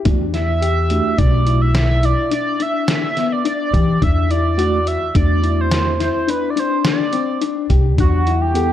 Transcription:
0.05 0.99 E2 medium
0.05 0.25 A3 medium
0.05 0.28 D4 medium
0.05 0.26 D4 medium
0.05 0.26 F#4 medium
0.05 kick medium
0.05 closed hi-hat medium
0.33 0.56 E4 medium
0.33 1.20 E5 loud
0.33 snare soft
0.33 closed hi-hat medium
0.61 1.08 G4 medium
0.61 closed hi-hat medium
0.90 1.70 A3 medium
0.90 1.70 D4 medium
0.90 1.70 F#4 medium
0.90 closed hi-hat medium
1.18 2.12 B1 medium
1.18 1.41 D4 medium
1.18 1.63 D5 loud
1.18 kick loud
1.18 closed hi-hat medium
1.46 1.93 E4 medium
1.46 closed hi-hat medium
1.61 1.75 E5 medium
1.75 2.06 E5 loud
1.75 snare loud
1.75 closed hi-hat medium
2.03 2.26 E4 medium
2.03 2.32 D5 medium
2.03 closed hi-hat medium
2.31 2.54 D4 medium
2.31 2.64 D5 loud
2.31 closed hi-hat medium
2.60 3.06 D4 medium
2.60 2.89 E5 loud
2.60 closed hi-hat medium
2.88 3.34 E5 loud
2.88 snare loud
2.88 closed hi-hat medium
3.17 3.40 B3 medium
3.17 snare soft
3.17 closed hi-hat medium
3.32 3.46 D5 medium
3.45 3.68 D4 medium
3.45 4.05 D5 medium
3.45 closed hi-hat medium
3.73 3.97 E3 medium
3.73 3.96 G4 medium
3.73 kick medium
3.73 closed hi-hat medium
4.02 4.95 E2 medium
4.02 4.25 D4 medium
4.02 4.32 E5 loud
4.02 kick medium
4.02 closed hi-hat medium
4.30 4.53 E4 medium
4.30 4.89 D5 loud
4.30 closed hi-hat soft
4.58 4.78 A3 medium
4.58 4.78 D4 medium
4.58 5.04 F#4 medium
4.58 4.78 F#4 medium
4.58 closed hi-hat medium
4.87 5.15 E5 medium
4.87 closed hi-hat soft
5.15 6.09 E2 medium
5.15 5.94 A3 medium
5.15 5.94 D4 medium
5.15 5.38 D4 medium
5.15 5.95 F#4 medium
5.15 5.62 D5 medium
5.15 kick medium
5.15 closed hi-hat medium
5.43 5.89 E4 medium
5.43 closed hi-hat medium
5.61 6.01 C5 medium
5.71 snare medium
5.71 closed hi-hat medium
5.99 6.23 E4 medium
5.99 6.31 C5 medium
5.99 snare soft
5.99 closed hi-hat medium
6.27 6.51 D4 medium
6.27 6.52 B4 medium
6.27 closed hi-hat medium
6.50 6.61 D5 medium
6.56 7.03 D4 medium
6.56 6.86 C5 medium
6.56 closed hi-hat medium
6.85 snare loud
6.85 closed hi-hat medium
6.89 7.68 D5 medium
7.13 7.36 C4 medium
7.13 closed hi-hat medium
7.41 7.65 D4 medium
7.41 closed hi-hat medium
7.70 7.99 C2 medium
7.70 7.93 G4 medium
7.70 kick medium
7.70 closed hi-hat medium
7.98 8.73 E2 medium
7.98 8.21 D4 medium
7.98 8.43 F#4 loud
7.98 kick medium
7.98 closed hi-hat medium
8.27 8.50 E4 medium
8.27 closed hi-hat soft
8.41 8.73 G4 loud
8.54 8.73 B3 medium
8.54 8.73 E4 medium
8.54 8.73 G4 medium
8.54 8.73 A4 medium
8.54 closed hi-hat medium

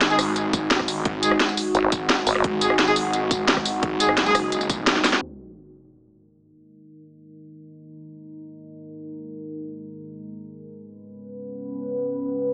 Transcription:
0.00 0.17 G#1 loud
0.00 5.18 G#3 medium
0.00 5.18 D#4 medium
0.00 5.19 F#4 medium
0.00 snare loud
0.00 closed hi-hat medium
0.10 0.17 G#3 medium
0.10 0.17 D#4 medium
0.10 0.17 G#4 loud
0.10 tambourine soft
0.19 1.04 G#1 loud
0.19 cross-stick medium
0.19 open hi-hat medium
0.19 tambourine medium
0.36 closed hi-hat medium
0.36 tambourine soft
0.53 kick loud
0.53 closed hi-hat medium
0.53 tambourine medium
0.71 snare loud
0.71 closed hi-hat medium
0.79 kick medium
0.79 cross-stick soft
0.88 open hi-hat medium
0.88 tambourine medium
1.05 1.39 G#1 loud
1.05 kick loud
1.05 closed hi-hat medium
1.23 1.34 G#3 medium
1.23 1.34 D#4 medium
1.23 1.34 G#4 medium
1.23 closed hi-hat medium
1.23 tambourine medium
1.31 cross-stick medium
1.40 snare loud
1.40 closed hi-hat medium
1.49 tambourine soft
1.57 open hi-hat medium
1.57 tambourine medium
1.75 1.91 G#1 loud
1.75 closed hi-hat medium
1.75 tambourine soft
1.92 2.25 G#1 loud
1.92 kick loud
1.92 closed hi-hat medium
1.92 tambourine medium
2.09 snare loud
2.09 closed hi-hat medium
2.27 2.43 G#1 loud
2.27 open hi-hat medium
2.27 tambourine medium
2.35 cross-stick medium
2.44 2.77 G#1 loud
2.44 kick loud
2.44 closed hi-hat medium
2.61 2.72 G#3 medium
2.61 2.72 D#4 medium
2.61 2.72 G#4 medium
2.61 closed hi-hat loud
2.61 tambourine medium
2.70 cross-stick medium
2.79 2.95 G#1 medium
2.79 snare loud
2.79 closed hi-hat medium
2.87 2.94 G#3 loud
2.87 2.94 D#4 medium
2.87 2.94 G#4 loud
2.87 tambourine soft
2.96 3.81 G#1 loud
2.96 open hi-hat medium
2.96 tambourine medium
3.13 closed hi-hat medium
3.13 tambourine soft
3.31 kick loud
3.31 closed hi-hat loud
3.31 tambourine medium
3.48 snare loud
3.48 closed hi-hat medium
3.57 kick medium
3.57 cross-stick soft
3.65 open hi-hat medium
3.65 tambourine medium
3.83 4.16 G#1 loud
3.83 kick loud
3.83 closed hi-hat medium
4.00 4.11 G#3 medium
4.00 4.11 D#4 medium
4.00 4.11 G#4 medium
4.00 closed hi-hat loud
4.00 tambourine medium
4.09 cross-stick medium
4.17 5.03 F#1 medium
4.17 snare loud
4.17 closed hi-hat medium
4.26 4.33 G#3 loud
4.26 4.33 D#4 medium
4.26 4.33 G#4 loud
4.26 tambourine soft
4.35 cross-stick medium
4.35 open hi-hat medium
4.35 tambourine medium
4.52 closed hi-hat medium
4.52 tambourine soft
4.61 tambourine soft
4.70 kick loud
4.70 closed hi-hat loud
4.70 tambourine medium
4.87 snare loud
4.87 closed hi-hat medium
4.96 snare soft
5.04 snare medium
5.04 open hi-hat medium
5.04 tambourine medium
5.13 snare medium
5.22 12.54 G#3 medium
5.22 10.72 D#4 medium
5.22 10.74 A#4 medium
5.22 sub drop medium
10.76 12.54 C#4 medium
10.76 12.54 B4 medium

